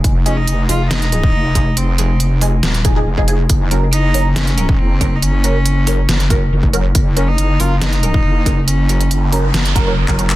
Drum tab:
HH |x-x-x-o-xxx---x-|x-x-x-o-xxx---x-|x-x-x-o-xxx---x-|x-x-x-o-xxx---x-|
CP |----------------|----------------|----------------|----------------|
SD |--------o-------|--------o-------|--------o-------|--------o-------|
BD |o----------o--o-|----------o--o--|o----------o--o-|----------o--o--|

HH |x-x-x-o-xxx---x-|x-xxx-o-xxx---x-|
CP |----------------|-------------x-x|
SD |--------o-------|--------o-------|
BD |o----------o--o-|----------o--o--|